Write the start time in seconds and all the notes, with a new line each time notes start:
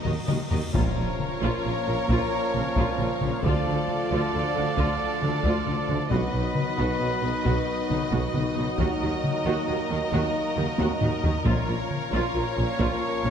Already playing: D#3 F#3 A#3 D#4 F#4 A#4 D#5, cymbal swell
0.02 D#2 D#3 F#4 A#4 D#5, taiko low-mid
0.27 D#2 D#3 F#4 A#4 D#5, taiko mid
0.49 D#2 D#3 F#4 A#4 D#5, taiko low
0.72 A#1 A#2 F3 A#3 C#4 F4 A#4 C#5 F5, taiko, impact
0.97 A#1 A#2 F4
1.20 taiko mid
1.41 A#1 A#2 F4
1.64 A#1 A#2 F4
1.87 A#1 A#2 C#4
2.09 A#1 A#2 F4, taiko
2.54 A#1 A#2 C#4, taiko mid
2.76 A#1 A#2 F4, taiko
2.98 A#1 A#2 F4, taiko mid
3.21 A#1 A#2 C#4, taiko mid
3.43 D2 D3 A3 D4 F4 A4 D5, taiko
3.66 D2 D3 F4
3.88 taiko mid
4.11 D2 D3 F4
4.33 D2 D3 F4
4.55 D2 D3 D4
4.77 D2 D3 F4, taiko
5.22 D2 D3 D4, taiko mid
5.44 D2 D3 F4, taiko
5.66 D2 D3 F4, taiko mid
5.89 D2 D3 D4, taiko mid
6.10 B1 B2 D#3 F#3 B3 D#4 F#4 B4 D#5, taiko
6.33 B1 B2 F#4
6.56 taiko mid
6.77 B1 B2 F#4
7.00 B1 B2 F#4
7.22 B1 B2 D#4
7.44 B1 B2 F#4, taiko
7.89 B1 B2 D#4, taiko mid
8.12 B1 B2 F#4, taiko
8.34 B1 B2 F#4, taiko mid
8.56 B1 B2 D#4, taiko mid
8.78 D#2 D#3 A#3 F#4 A#4 D#5, taiko
9.01 D#2 D#3 F#4
9.24 taiko mid
9.45 D#2 D#3 F#4
9.67 D#2 D#3 F#4
9.89 D#2 D#3 D#4
10.11 D#2 D#3 F#4, taiko
10.56 D#2 D#3 D#4, taiko mid
10.78 D#2 D#3 F#4, taiko high
11.01 D#2 D#3 F#4, taiko low-mid
11.23 D#2 D#3 D#4, taiko low
11.44 A#1 A#2 F3 A#3 C#4 F4 C#5 F5, taiko
11.67 A#1 A#2 F4
11.91 taiko mid
12.11 A#1 A#2 F4
12.34 A#1 A#2 F4
12.57 A#1 A#2 C#4
12.79 A#1 A#2 F4, taiko
13.24 A#1 A#2 C#4, taiko mid